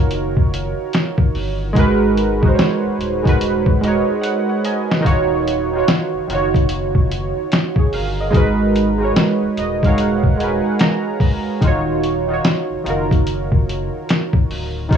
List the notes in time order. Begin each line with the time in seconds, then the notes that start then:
Already playing: F#1 D#3 D#4 F4 F#4 A#4 C#5
0.11 closed hi-hat
0.37 kick
0.54 closed hi-hat
0.93 snare, closed hi-hat
1.18 kick
1.35 G1, open hi-hat
1.73 G#1 G#3 D#4 F#4, kick, closed hi-hat
1.78 A#4 B4
2.18 closed hi-hat
2.42 G#3 D#4 F#4, kick
2.47 A#4 C5
2.55 C#5
2.59 snare, closed hi-hat
2.84 D#1
2.99 D#1, closed hi-hat
3.23 G#3 D#4 F#4, kick
3.27 A#4 B4, closed hi-hat
3.41 closed hi-hat
3.66 kick
3.81 G#3 D#4 F#4 D#5, closed hi-hat
3.86 A#4 C#5
4.21 F#5, closed hi-hat
4.49 C#5 F#5
4.64 A#4 D#5 G#5, closed hi-hat
4.90 F#4 B4, snare
5.00 D#3 D#4 F4
5.05 D#1 F#4 C#5, kick, closed hi-hat
5.47 closed hi-hat
5.72 D#3 D#4 F4
5.77 F#4 C#5
5.88 snare, closed hi-hat
6.14 F#1
6.27 F#1 D#3 D#4 F4, closed hi-hat
6.32 F#4 C#5
6.54 kick, closed hi-hat
6.69 closed hi-hat
6.95 kick
7.11 closed hi-hat
7.52 snare, closed hi-hat
7.76 G#4 C#5, kick
7.93 G1 A#4 F5, open hi-hat
8.20 A#4 D#5
8.30 G#1 G#3 D#4 F#4, kick
8.34 A#4 B4, closed hi-hat
8.76 closed hi-hat
8.98 G#3 D#4 F#4
9.03 A#4 C#5
9.16 snare, closed hi-hat
9.43 D#1
9.57 D#1 D#5, closed hi-hat
9.83 G#3 D#4 F#4 F5, kick, closed hi-hat
9.87 A#4 C#5
9.98 F#5, closed hi-hat
10.23 kick
10.37 G#3 D#4 F#4 G#5, closed hi-hat
10.42 A#4 B4
10.64 F#5
10.79 A#5, snare, closed hi-hat
11.20 A#5, kick, open hi-hat
11.61 D#1 D#3 D#4 F4, kick, closed hi-hat
11.66 F#4 C#5
12.04 closed hi-hat
12.27 D#3 D#4 F4
12.32 F#4 C#5
12.45 snare, closed hi-hat
12.70 F#1
12.84 F#1 D#3 D#4 F4, closed hi-hat
12.88 F#4 A#4
13.11 kick, closed hi-hat
13.27 closed hi-hat
13.52 kick
13.70 closed hi-hat
14.09 snare, closed hi-hat
14.33 kick
14.50 D1, open hi-hat
14.89 D#1 D#3 D#4 F4, kick, closed hi-hat
14.94 F#4